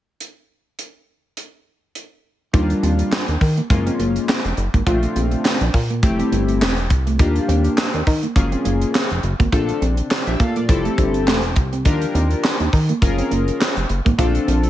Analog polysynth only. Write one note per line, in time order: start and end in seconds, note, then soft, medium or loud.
2.53 3.23 G3 medium
2.53 3.24 A#3 medium
2.53 3.24 D4 medium
2.53 3.24 F4 medium
3.70 4.40 G#3 medium
3.70 4.40 A#3 medium
3.70 4.40 C#4 medium
3.70 4.40 F4 medium
4.86 5.56 A3 medium
4.86 5.57 C4 medium
4.86 5.57 D4 medium
4.86 5.57 F4 medium
6.03 6.73 A3 medium
6.03 6.73 C4 medium
6.03 6.73 E4 medium
6.03 6.73 G4 medium
7.19 7.89 A#3 medium
7.19 7.89 D4 medium
7.19 7.90 F4 medium
7.19 7.90 G4 medium
8.36 9.06 A#3 medium
8.36 9.06 C#4 medium
8.36 9.06 F4 medium
8.36 9.06 G#4 medium
9.52 10.22 C4 medium
9.52 10.23 D4 medium
9.52 9.82 F4 medium
9.52 9.82 A4 medium
10.11 10.27 F4 medium
10.11 10.26 D5 medium
10.27 10.40 G4 medium
10.27 10.39 E5 medium
10.40 10.56 A4 medium
10.40 10.56 F5 medium
10.56 10.84 F4 medium
10.56 10.84 D5 medium
10.69 11.39 C4 medium
10.69 11.39 E4 medium
10.69 11.39 G4 medium
10.69 11.39 A4 medium
11.85 12.55 D4 medium
11.85 12.55 F4 medium
11.85 12.56 G4 medium
11.85 12.56 A#4 medium
13.01 13.72 C#4 medium
13.01 13.72 F4 medium
13.01 13.72 G#4 medium
13.01 13.72 A#4 loud
14.18 14.70 C4 medium
14.18 14.70 D4 medium
14.18 14.70 F4 medium
14.18 14.70 A4 medium